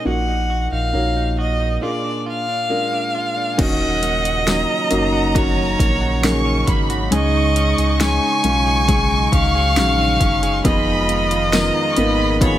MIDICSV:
0, 0, Header, 1, 8, 480
1, 0, Start_track
1, 0, Key_signature, -6, "minor"
1, 0, Tempo, 882353
1, 31, Time_signature, 4, 2, 24, 8
1, 6846, End_track
2, 0, Start_track
2, 0, Title_t, "Violin section"
2, 0, Program_c, 0, 48
2, 1912, Note_on_c, 0, 80, 49
2, 1951, Note_off_c, 0, 80, 0
2, 1951, Note_on_c, 0, 78, 91
2, 2431, Note_off_c, 0, 78, 0
2, 2432, Note_on_c, 0, 82, 101
2, 3370, Note_off_c, 0, 82, 0
2, 3395, Note_on_c, 0, 85, 101
2, 3628, Note_on_c, 0, 83, 87
2, 3633, Note_off_c, 0, 85, 0
2, 3868, Note_on_c, 0, 85, 107
2, 3869, Note_off_c, 0, 83, 0
2, 5790, Note_off_c, 0, 85, 0
2, 5790, Note_on_c, 0, 83, 101
2, 6249, Note_off_c, 0, 83, 0
2, 6268, Note_on_c, 0, 82, 91
2, 6471, Note_off_c, 0, 82, 0
2, 6472, Note_on_c, 0, 85, 70
2, 6509, Note_on_c, 0, 83, 98
2, 6510, Note_off_c, 0, 85, 0
2, 6742, Note_off_c, 0, 83, 0
2, 6748, Note_on_c, 0, 83, 106
2, 6846, Note_off_c, 0, 83, 0
2, 6846, End_track
3, 0, Start_track
3, 0, Title_t, "Violin"
3, 0, Program_c, 1, 40
3, 42, Note_on_c, 1, 78, 76
3, 374, Note_off_c, 1, 78, 0
3, 399, Note_on_c, 1, 77, 74
3, 733, Note_off_c, 1, 77, 0
3, 759, Note_on_c, 1, 75, 68
3, 979, Note_off_c, 1, 75, 0
3, 999, Note_on_c, 1, 74, 60
3, 1218, Note_off_c, 1, 74, 0
3, 1245, Note_on_c, 1, 77, 90
3, 1960, Note_on_c, 1, 75, 99
3, 1968, Note_off_c, 1, 77, 0
3, 2921, Note_on_c, 1, 73, 80
3, 2930, Note_off_c, 1, 75, 0
3, 3636, Note_off_c, 1, 73, 0
3, 3878, Note_on_c, 1, 75, 94
3, 4333, Note_off_c, 1, 75, 0
3, 4359, Note_on_c, 1, 80, 97
3, 5053, Note_off_c, 1, 80, 0
3, 5081, Note_on_c, 1, 77, 104
3, 5774, Note_off_c, 1, 77, 0
3, 5801, Note_on_c, 1, 75, 99
3, 6734, Note_off_c, 1, 75, 0
3, 6763, Note_on_c, 1, 73, 85
3, 6846, Note_off_c, 1, 73, 0
3, 6846, End_track
4, 0, Start_track
4, 0, Title_t, "Upright piano"
4, 0, Program_c, 2, 0
4, 0, Control_c, 2, 64, 127
4, 23, Note_on_c, 2, 58, 54
4, 27, Note_on_c, 2, 46, 48
4, 27, Note_on_c, 2, 63, 48
4, 29, Note_on_c, 2, 66, 51
4, 32, Note_on_c, 2, 70, 57
4, 38, Control_c, 2, 64, 0
4, 122, Control_c, 2, 64, 127
4, 483, Note_off_c, 2, 58, 0
4, 485, Note_off_c, 2, 63, 0
4, 486, Note_off_c, 2, 66, 0
4, 487, Note_off_c, 2, 70, 0
4, 504, Note_on_c, 2, 58, 50
4, 507, Note_on_c, 2, 63, 48
4, 509, Note_on_c, 2, 66, 48
4, 512, Note_on_c, 2, 73, 57
4, 727, Note_off_c, 2, 46, 0
4, 963, Note_off_c, 2, 58, 0
4, 965, Note_off_c, 2, 63, 0
4, 966, Note_off_c, 2, 66, 0
4, 967, Note_off_c, 2, 73, 0
4, 982, Note_on_c, 2, 58, 55
4, 986, Note_on_c, 2, 62, 52
4, 989, Note_on_c, 2, 65, 49
4, 991, Note_on_c, 2, 68, 62
4, 999, Control_c, 2, 64, 0
4, 1076, Control_c, 2, 64, 127
4, 1443, Note_off_c, 2, 58, 0
4, 1444, Note_off_c, 2, 62, 0
4, 1446, Note_off_c, 2, 65, 0
4, 1447, Note_off_c, 2, 68, 0
4, 1463, Note_on_c, 2, 58, 53
4, 1465, Note_on_c, 2, 62, 52
4, 1469, Note_on_c, 2, 65, 48
4, 1472, Note_on_c, 2, 70, 60
4, 1923, Note_off_c, 2, 58, 0
4, 1924, Note_off_c, 2, 62, 0
4, 1926, Note_off_c, 2, 65, 0
4, 1927, Note_off_c, 2, 70, 0
4, 1943, Note_on_c, 2, 58, 83
4, 1946, Note_on_c, 2, 61, 75
4, 1947, Note_on_c, 2, 46, 60
4, 1948, Note_on_c, 2, 63, 78
4, 1950, Note_on_c, 2, 66, 87
4, 1959, Control_c, 2, 64, 0
4, 2066, Control_c, 2, 64, 127
4, 2403, Note_off_c, 2, 58, 0
4, 2404, Note_off_c, 2, 61, 0
4, 2405, Note_off_c, 2, 63, 0
4, 2407, Note_off_c, 2, 66, 0
4, 2422, Note_on_c, 2, 58, 62
4, 2426, Note_on_c, 2, 61, 60
4, 2428, Note_on_c, 2, 63, 60
4, 2432, Note_on_c, 2, 66, 69
4, 2647, Note_off_c, 2, 46, 0
4, 2654, Note_off_c, 2, 58, 0
4, 2656, Note_off_c, 2, 61, 0
4, 2657, Note_off_c, 2, 63, 0
4, 2659, Note_off_c, 2, 66, 0
4, 2663, Note_on_c, 2, 58, 75
4, 2666, Note_on_c, 2, 61, 70
4, 2669, Note_on_c, 2, 63, 73
4, 2671, Note_on_c, 2, 66, 80
4, 2894, Note_off_c, 2, 58, 0
4, 2896, Note_off_c, 2, 61, 0
4, 2898, Note_off_c, 2, 63, 0
4, 2899, Note_off_c, 2, 66, 0
4, 2902, Note_on_c, 2, 58, 66
4, 2906, Note_on_c, 2, 61, 64
4, 2908, Note_on_c, 2, 63, 63
4, 2910, Note_on_c, 2, 66, 79
4, 3363, Note_off_c, 2, 58, 0
4, 3364, Note_off_c, 2, 61, 0
4, 3366, Note_off_c, 2, 63, 0
4, 3367, Note_off_c, 2, 66, 0
4, 3387, Note_on_c, 2, 58, 67
4, 3389, Note_on_c, 2, 61, 59
4, 3391, Note_on_c, 2, 63, 61
4, 3395, Note_on_c, 2, 68, 71
4, 3845, Note_off_c, 2, 58, 0
4, 3846, Note_off_c, 2, 61, 0
4, 3847, Note_off_c, 2, 63, 0
4, 3849, Note_off_c, 2, 68, 0
4, 3866, Note_on_c, 2, 56, 84
4, 3869, Note_on_c, 2, 61, 81
4, 3870, Note_on_c, 2, 44, 55
4, 3871, Note_on_c, 2, 63, 75
4, 3874, Note_on_c, 2, 68, 98
4, 3878, Control_c, 2, 64, 0
4, 3957, Control_c, 2, 64, 127
4, 4324, Note_off_c, 2, 56, 0
4, 4326, Note_off_c, 2, 61, 0
4, 4327, Note_off_c, 2, 63, 0
4, 4329, Note_off_c, 2, 68, 0
4, 4348, Note_on_c, 2, 56, 67
4, 4352, Note_on_c, 2, 61, 62
4, 4355, Note_on_c, 2, 63, 59
4, 4357, Note_on_c, 2, 68, 72
4, 4569, Note_off_c, 2, 44, 0
4, 4577, Note_off_c, 2, 56, 0
4, 4580, Note_off_c, 2, 61, 0
4, 4581, Note_off_c, 2, 63, 0
4, 4582, Note_off_c, 2, 68, 0
4, 4589, Note_on_c, 2, 56, 62
4, 4592, Note_on_c, 2, 61, 61
4, 4595, Note_on_c, 2, 63, 62
4, 4597, Note_on_c, 2, 65, 73
4, 4818, Note_off_c, 2, 56, 0
4, 4819, Note_off_c, 2, 61, 0
4, 4821, Note_off_c, 2, 63, 0
4, 4822, Note_off_c, 2, 65, 0
4, 4828, Note_on_c, 2, 56, 68
4, 4830, Note_on_c, 2, 61, 62
4, 4833, Note_on_c, 2, 63, 62
4, 4838, Note_on_c, 2, 68, 76
4, 5285, Note_off_c, 2, 56, 0
4, 5287, Note_off_c, 2, 61, 0
4, 5288, Note_off_c, 2, 63, 0
4, 5290, Note_off_c, 2, 68, 0
4, 5308, Note_on_c, 2, 56, 67
4, 5310, Note_on_c, 2, 61, 60
4, 5313, Note_on_c, 2, 63, 62
4, 5317, Note_on_c, 2, 66, 73
4, 5766, Note_off_c, 2, 56, 0
4, 5767, Note_off_c, 2, 61, 0
4, 5768, Note_off_c, 2, 63, 0
4, 5770, Note_off_c, 2, 66, 0
4, 5787, Note_on_c, 2, 59, 88
4, 5790, Note_on_c, 2, 63, 80
4, 5791, Note_on_c, 2, 53, 59
4, 5793, Note_on_c, 2, 65, 76
4, 5796, Note_on_c, 2, 68, 96
4, 5799, Control_c, 2, 64, 0
4, 5880, Control_c, 2, 64, 127
4, 6245, Note_off_c, 2, 59, 0
4, 6247, Note_off_c, 2, 63, 0
4, 6248, Note_off_c, 2, 65, 0
4, 6250, Note_off_c, 2, 68, 0
4, 6265, Note_on_c, 2, 59, 66
4, 6268, Note_on_c, 2, 63, 59
4, 6270, Note_on_c, 2, 65, 57
4, 6275, Note_on_c, 2, 70, 78
4, 6489, Note_off_c, 2, 53, 0
4, 6496, Note_off_c, 2, 59, 0
4, 6498, Note_off_c, 2, 63, 0
4, 6499, Note_off_c, 2, 65, 0
4, 6501, Note_off_c, 2, 70, 0
4, 6510, Note_on_c, 2, 59, 80
4, 6513, Note_on_c, 2, 63, 73
4, 6515, Note_on_c, 2, 65, 74
4, 6518, Note_on_c, 2, 58, 90
4, 6738, Note_off_c, 2, 59, 0
4, 6740, Note_off_c, 2, 63, 0
4, 6741, Note_off_c, 2, 65, 0
4, 6743, Note_off_c, 2, 58, 0
4, 6747, Note_on_c, 2, 59, 69
4, 6749, Note_on_c, 2, 63, 66
4, 6753, Note_on_c, 2, 65, 66
4, 6755, Note_on_c, 2, 68, 79
4, 6846, Note_off_c, 2, 59, 0
4, 6846, Note_off_c, 2, 63, 0
4, 6846, Note_off_c, 2, 65, 0
4, 6846, Note_off_c, 2, 68, 0
4, 6846, End_track
5, 0, Start_track
5, 0, Title_t, "Clean electric guitar"
5, 0, Program_c, 3, 27
5, 0, Note_on_c, 3, 56, 46
5, 0, Note_on_c, 3, 63, 45
5, 32, Note_on_c, 3, 46, 59
5, 37, Note_on_c, 3, 66, 54
5, 78, Note_off_c, 3, 56, 0
5, 79, Note_off_c, 3, 63, 0
5, 154, Note_on_c, 3, 63, 45
5, 266, Note_off_c, 3, 66, 0
5, 272, Note_on_c, 3, 66, 53
5, 387, Note_off_c, 3, 63, 0
5, 394, Note_on_c, 3, 63, 47
5, 514, Note_on_c, 3, 58, 48
5, 628, Note_off_c, 3, 63, 0
5, 634, Note_on_c, 3, 63, 42
5, 747, Note_off_c, 3, 66, 0
5, 753, Note_on_c, 3, 66, 51
5, 866, Note_off_c, 3, 63, 0
5, 872, Note_on_c, 3, 63, 43
5, 985, Note_off_c, 3, 46, 0
5, 992, Note_off_c, 3, 66, 0
5, 992, Note_on_c, 3, 46, 63
5, 995, Note_on_c, 3, 65, 55
5, 1040, Note_off_c, 3, 63, 0
5, 1113, Note_on_c, 3, 62, 44
5, 1225, Note_off_c, 3, 65, 0
5, 1231, Note_on_c, 3, 65, 50
5, 1347, Note_off_c, 3, 62, 0
5, 1353, Note_on_c, 3, 62, 43
5, 1469, Note_off_c, 3, 58, 0
5, 1471, Note_on_c, 3, 56, 45
5, 1586, Note_off_c, 3, 62, 0
5, 1592, Note_on_c, 3, 62, 43
5, 1707, Note_off_c, 3, 65, 0
5, 1713, Note_on_c, 3, 65, 46
5, 1827, Note_off_c, 3, 62, 0
5, 1833, Note_on_c, 3, 62, 42
5, 1952, Note_off_c, 3, 65, 0
5, 1952, Note_on_c, 3, 51, 76
5, 1954, Note_on_c, 3, 66, 62
5, 1999, Note_off_c, 3, 46, 0
5, 1999, Note_off_c, 3, 56, 0
5, 2000, Note_off_c, 3, 62, 0
5, 2071, Note_on_c, 3, 61, 56
5, 2191, Note_on_c, 3, 58, 57
5, 2305, Note_off_c, 3, 66, 0
5, 2312, Note_on_c, 3, 66, 60
5, 2423, Note_off_c, 3, 58, 0
5, 2430, Note_on_c, 3, 58, 59
5, 2547, Note_off_c, 3, 61, 0
5, 2550, Note_on_c, 3, 61, 53
5, 2662, Note_off_c, 3, 58, 0
5, 2669, Note_on_c, 3, 58, 60
5, 2782, Note_off_c, 3, 66, 0
5, 2789, Note_on_c, 3, 66, 59
5, 2907, Note_off_c, 3, 51, 0
5, 2907, Note_off_c, 3, 66, 0
5, 2909, Note_on_c, 3, 51, 73
5, 2914, Note_on_c, 3, 66, 64
5, 3027, Note_off_c, 3, 61, 0
5, 3029, Note_on_c, 3, 61, 53
5, 3143, Note_off_c, 3, 58, 0
5, 3149, Note_on_c, 3, 58, 57
5, 3262, Note_off_c, 3, 66, 0
5, 3269, Note_on_c, 3, 66, 58
5, 3382, Note_off_c, 3, 58, 0
5, 3389, Note_on_c, 3, 58, 55
5, 3508, Note_off_c, 3, 61, 0
5, 3510, Note_on_c, 3, 61, 55
5, 3624, Note_off_c, 3, 58, 0
5, 3631, Note_on_c, 3, 58, 56
5, 3746, Note_off_c, 3, 66, 0
5, 3753, Note_on_c, 3, 66, 59
5, 3871, Note_on_c, 3, 49, 79
5, 3872, Note_off_c, 3, 66, 0
5, 3875, Note_on_c, 3, 68, 65
5, 3919, Note_off_c, 3, 58, 0
5, 3991, Note_off_c, 3, 61, 0
5, 3993, Note_on_c, 3, 63, 58
5, 4115, Note_on_c, 3, 61, 58
5, 4131, Note_off_c, 3, 51, 0
5, 4233, Note_off_c, 3, 68, 0
5, 4235, Note_on_c, 3, 68, 59
5, 4349, Note_off_c, 3, 61, 0
5, 4356, Note_on_c, 3, 61, 57
5, 4472, Note_off_c, 3, 63, 0
5, 4474, Note_on_c, 3, 63, 54
5, 4588, Note_off_c, 3, 61, 0
5, 4595, Note_on_c, 3, 61, 58
5, 4709, Note_off_c, 3, 68, 0
5, 4711, Note_on_c, 3, 68, 59
5, 4826, Note_off_c, 3, 49, 0
5, 4833, Note_off_c, 3, 68, 0
5, 4833, Note_on_c, 3, 49, 81
5, 4835, Note_on_c, 3, 68, 68
5, 4953, Note_off_c, 3, 63, 0
5, 4956, Note_on_c, 3, 63, 53
5, 5066, Note_off_c, 3, 61, 0
5, 5073, Note_on_c, 3, 61, 61
5, 5193, Note_off_c, 3, 68, 0
5, 5196, Note_on_c, 3, 68, 62
5, 5309, Note_off_c, 3, 61, 0
5, 5315, Note_on_c, 3, 61, 58
5, 5431, Note_off_c, 3, 63, 0
5, 5433, Note_on_c, 3, 63, 56
5, 5546, Note_off_c, 3, 61, 0
5, 5552, Note_on_c, 3, 61, 57
5, 5671, Note_off_c, 3, 68, 0
5, 5673, Note_on_c, 3, 68, 60
5, 5794, Note_on_c, 3, 41, 78
5, 5795, Note_off_c, 3, 68, 0
5, 5797, Note_on_c, 3, 65, 68
5, 5840, Note_off_c, 3, 49, 0
5, 5840, Note_off_c, 3, 61, 0
5, 5913, Note_off_c, 3, 63, 0
5, 5915, Note_on_c, 3, 63, 60
5, 6032, Note_on_c, 3, 59, 60
5, 6152, Note_off_c, 3, 65, 0
5, 6154, Note_on_c, 3, 65, 61
5, 6268, Note_off_c, 3, 59, 0
5, 6275, Note_on_c, 3, 59, 64
5, 6389, Note_off_c, 3, 63, 0
5, 6395, Note_on_c, 3, 63, 55
5, 6505, Note_off_c, 3, 59, 0
5, 6511, Note_on_c, 3, 59, 61
5, 6631, Note_off_c, 3, 65, 0
5, 6633, Note_on_c, 3, 65, 58
5, 6747, Note_off_c, 3, 41, 0
5, 6753, Note_on_c, 3, 41, 81
5, 6755, Note_off_c, 3, 65, 0
5, 6757, Note_on_c, 3, 65, 67
5, 6846, Note_off_c, 3, 41, 0
5, 6846, Note_off_c, 3, 59, 0
5, 6846, Note_off_c, 3, 63, 0
5, 6846, Note_off_c, 3, 65, 0
5, 6846, End_track
6, 0, Start_track
6, 0, Title_t, "Analog synth pad"
6, 0, Program_c, 4, 89
6, 1950, Note_on_c, 4, 54, 72
6, 1953, Note_on_c, 4, 49, 83
6, 1953, Note_on_c, 4, 63, 88
6, 3851, Note_off_c, 4, 54, 0
6, 3869, Note_on_c, 4, 56, 75
6, 4820, Note_off_c, 4, 56, 0
6, 4833, Note_on_c, 4, 54, 69
6, 5770, Note_off_c, 4, 49, 0
6, 5770, Note_off_c, 4, 63, 0
6, 5783, Note_off_c, 4, 54, 0
6, 5792, Note_on_c, 4, 51, 80
6, 5793, Note_on_c, 4, 56, 72
6, 5794, Note_on_c, 4, 65, 86
6, 6743, Note_off_c, 4, 65, 0
6, 6749, Note_on_c, 4, 63, 85
6, 6846, Note_off_c, 4, 51, 0
6, 6846, Note_off_c, 4, 56, 0
6, 6846, Note_off_c, 4, 63, 0
6, 6846, End_track
7, 0, Start_track
7, 0, Title_t, "Sub bass"
7, 0, Program_c, 5, 38
7, 30, Note_on_c, 5, 34, 88
7, 369, Note_off_c, 5, 34, 0
7, 392, Note_on_c, 5, 34, 83
7, 503, Note_off_c, 5, 34, 0
7, 511, Note_on_c, 5, 34, 91
7, 969, Note_off_c, 5, 34, 0
7, 1952, Note_on_c, 5, 27, 94
7, 2530, Note_off_c, 5, 27, 0
7, 2674, Note_on_c, 5, 30, 88
7, 3131, Note_off_c, 5, 30, 0
7, 3152, Note_on_c, 5, 34, 96
7, 3610, Note_off_c, 5, 34, 0
7, 3631, Note_on_c, 5, 32, 86
7, 3854, Note_off_c, 5, 32, 0
7, 3871, Note_on_c, 5, 37, 98
7, 4209, Note_off_c, 5, 37, 0
7, 4233, Note_on_c, 5, 37, 90
7, 4455, Note_off_c, 5, 37, 0
7, 4591, Note_on_c, 5, 35, 87
7, 5049, Note_off_c, 5, 35, 0
7, 5073, Note_on_c, 5, 37, 101
7, 5314, Note_on_c, 5, 34, 96
7, 5322, Note_off_c, 5, 37, 0
7, 5536, Note_off_c, 5, 34, 0
7, 5551, Note_on_c, 5, 30, 94
7, 5774, Note_off_c, 5, 30, 0
7, 5792, Note_on_c, 5, 29, 99
7, 6370, Note_off_c, 5, 29, 0
7, 6514, Note_on_c, 5, 32, 96
7, 6846, Note_off_c, 5, 32, 0
7, 6846, End_track
8, 0, Start_track
8, 0, Title_t, "Drums"
8, 1951, Note_on_c, 9, 36, 108
8, 1952, Note_on_c, 9, 42, 83
8, 1952, Note_on_c, 9, 49, 86
8, 2005, Note_off_c, 9, 36, 0
8, 2006, Note_off_c, 9, 42, 0
8, 2006, Note_off_c, 9, 49, 0
8, 2191, Note_on_c, 9, 42, 72
8, 2245, Note_off_c, 9, 42, 0
8, 2314, Note_on_c, 9, 42, 51
8, 2368, Note_off_c, 9, 42, 0
8, 2434, Note_on_c, 9, 42, 79
8, 2435, Note_on_c, 9, 38, 105
8, 2489, Note_off_c, 9, 42, 0
8, 2490, Note_off_c, 9, 38, 0
8, 2669, Note_on_c, 9, 42, 65
8, 2723, Note_off_c, 9, 42, 0
8, 2911, Note_on_c, 9, 36, 96
8, 2914, Note_on_c, 9, 42, 86
8, 2966, Note_off_c, 9, 36, 0
8, 2969, Note_off_c, 9, 42, 0
8, 3153, Note_on_c, 9, 36, 82
8, 3157, Note_on_c, 9, 42, 70
8, 3207, Note_off_c, 9, 36, 0
8, 3211, Note_off_c, 9, 42, 0
8, 3392, Note_on_c, 9, 42, 70
8, 3396, Note_on_c, 9, 38, 101
8, 3447, Note_off_c, 9, 42, 0
8, 3450, Note_off_c, 9, 38, 0
8, 3631, Note_on_c, 9, 36, 73
8, 3631, Note_on_c, 9, 42, 62
8, 3685, Note_off_c, 9, 36, 0
8, 3686, Note_off_c, 9, 42, 0
8, 3753, Note_on_c, 9, 42, 49
8, 3807, Note_off_c, 9, 42, 0
8, 3873, Note_on_c, 9, 42, 85
8, 3927, Note_off_c, 9, 42, 0
8, 4113, Note_on_c, 9, 42, 70
8, 4168, Note_off_c, 9, 42, 0
8, 4234, Note_on_c, 9, 42, 51
8, 4289, Note_off_c, 9, 42, 0
8, 4355, Note_on_c, 9, 38, 105
8, 4355, Note_on_c, 9, 42, 84
8, 4409, Note_off_c, 9, 42, 0
8, 4410, Note_off_c, 9, 38, 0
8, 4591, Note_on_c, 9, 42, 67
8, 4645, Note_off_c, 9, 42, 0
8, 4832, Note_on_c, 9, 36, 93
8, 4834, Note_on_c, 9, 42, 84
8, 4886, Note_off_c, 9, 36, 0
8, 4888, Note_off_c, 9, 42, 0
8, 5073, Note_on_c, 9, 36, 82
8, 5075, Note_on_c, 9, 42, 67
8, 5127, Note_off_c, 9, 36, 0
8, 5130, Note_off_c, 9, 42, 0
8, 5312, Note_on_c, 9, 42, 72
8, 5316, Note_on_c, 9, 38, 100
8, 5366, Note_off_c, 9, 42, 0
8, 5370, Note_off_c, 9, 38, 0
8, 5551, Note_on_c, 9, 36, 72
8, 5552, Note_on_c, 9, 42, 67
8, 5606, Note_off_c, 9, 36, 0
8, 5607, Note_off_c, 9, 42, 0
8, 5674, Note_on_c, 9, 42, 51
8, 5728, Note_off_c, 9, 42, 0
8, 5792, Note_on_c, 9, 36, 111
8, 5793, Note_on_c, 9, 42, 84
8, 5847, Note_off_c, 9, 36, 0
8, 5848, Note_off_c, 9, 42, 0
8, 6033, Note_on_c, 9, 42, 70
8, 6088, Note_off_c, 9, 42, 0
8, 6153, Note_on_c, 9, 42, 51
8, 6207, Note_off_c, 9, 42, 0
8, 6273, Note_on_c, 9, 42, 88
8, 6274, Note_on_c, 9, 38, 108
8, 6274, Note_on_c, 9, 54, 81
8, 6328, Note_off_c, 9, 38, 0
8, 6328, Note_off_c, 9, 42, 0
8, 6328, Note_off_c, 9, 54, 0
8, 6509, Note_on_c, 9, 42, 72
8, 6564, Note_off_c, 9, 42, 0
8, 6751, Note_on_c, 9, 36, 101
8, 6754, Note_on_c, 9, 42, 87
8, 6806, Note_off_c, 9, 36, 0
8, 6808, Note_off_c, 9, 42, 0
8, 6846, End_track
0, 0, End_of_file